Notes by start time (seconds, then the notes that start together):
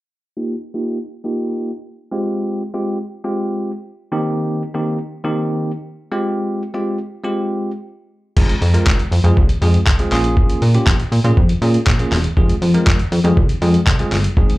0.37 A#3 D#4 F4 G4
0.74 A#3 D#4 F4 G4
1.24 A#3 D#4 F4 G4
2.11 G#3 C4 F4 G4
2.74 G#3 C4 F4 G4
3.24 G#3 C4 F4 G4
4.12 D#3 A#3 C4 D#4 G4
4.74 D#3 A#3 C4 D#4 G4
5.24 D#3 A#3 C4 D#4 G4
6.12 G#3 C4 F4 G4
6.74 G#3 C4 F4 G4
7.24 G#3 C4 F4 G4
8.36 F1 G#3 C4 F4 G#4, kick, crash
8.49 closed hi-hat
8.62 F2, open hi-hat
8.74 G#3 C4 F4 A#4, closed hi-hat
8.87 F1, kick, clap
8.99 closed hi-hat
9.12 F2, open hi-hat
9.24 F2 G#3 C4 F4 G#4, closed hi-hat
9.37 C2, kick
9.49 closed hi-hat
9.62 F2 G#3 C4 F4 G#4, open hi-hat
9.74 closed hi-hat
9.87 C2, kick, clap
9.99 G#3 C4 F4 G#4, closed hi-hat
10.12 A#1 A#3 C#4 F4 G#4, clap, open hi-hat
10.24 closed hi-hat
10.37 kick
10.50 closed hi-hat
10.62 A#2, open hi-hat
10.74 A#3 C#4 F4 G4, closed hi-hat
10.87 A#1, kick, clap
11.00 closed hi-hat
11.12 A#2, open hi-hat
11.24 A#2 A#3 C#4 F4 G#4, closed hi-hat
11.37 F2, kick
11.49 closed hi-hat
11.62 A#2 A#3 C#4 F4 G#4, open hi-hat
11.74 closed hi-hat
11.87 A#1, kick, clap
11.99 A#3 C#4 F4 G#4, closed hi-hat
12.12 E1, clap, open hi-hat
12.24 closed hi-hat
12.37 F1 G#3 C4 F4 G#4, kick
12.49 closed hi-hat
12.62 F2, open hi-hat
12.74 G#3 C4 F4 A#4, closed hi-hat
12.87 F1, kick, clap
12.99 closed hi-hat
13.12 F2, open hi-hat
13.24 F2 G#3 C4 F4 G#4, closed hi-hat
13.37 C2, kick
13.49 closed hi-hat
13.62 F2 G#3 C4 F4 G#4, open hi-hat
13.74 closed hi-hat
13.87 C2, kick, clap
13.99 G#3 C4 F4 G#4, closed hi-hat
14.12 G1, clap, open hi-hat
14.24 closed hi-hat
14.37 G#1 G#3 C4 D#4 G#4, kick
14.50 closed hi-hat